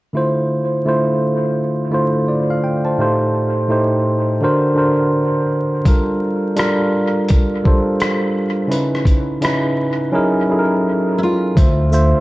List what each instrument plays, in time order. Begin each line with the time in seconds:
0.13 tine electric piano D3 A3 E4 F4 C5
0.85 tine electric piano D3 A3 E4 F4 C5
1.90 tine electric piano D3 A3 E4 F4 C5
2.28 tine electric piano F4 D5
2.50 tine electric piano A4 F5
2.64 tine electric piano G5
2.85 tine electric piano C5 A5
2.98 tine electric piano A2 A3 D#4 G4 C5
3.68 tine electric piano A2 A3 D#4 G4 C5
4.41 tine electric piano D3 D4 F#4 A#4 C5
4.75 tine electric piano D3 D4 F#4 A#4 C5
5.85 tine electric piano G3 D4 F4 A4 A#4, kick, closed hi-hat
6.56 tine electric piano G3 D4 F4 A4 A#4, cross-stick, closed hi-hat
7.28 kick, closed hi-hat
7.64 tine electric piano G3 D4 F4 A4 C5, kick
8.00 cross-stick, closed hi-hat
8.67 tine electric piano C#3 C#4 D#4 E4 B4
8.72 closed hi-hat
8.95 cross-stick
9.05 kick, closed hi-hat
9.41 tine electric piano C#3 C#4 D#4 E4 B4, cross-stick, closed hi-hat
10.12 tine electric piano F#3 C#4 D#4 E4 G#4 A#4
10.49 tine electric piano F#3 C#4 D#4 E4 G#4 A4
10.59 tine electric piano A#4
11.18 nylon-string guitar E4
11.23 nylon-string guitar F4
11.55 upright bass D2, tine electric piano D3 A3 F4 C5 E5, kick, closed hi-hat
11.91 tine electric piano D3 A3 F4 C5 E5, shaker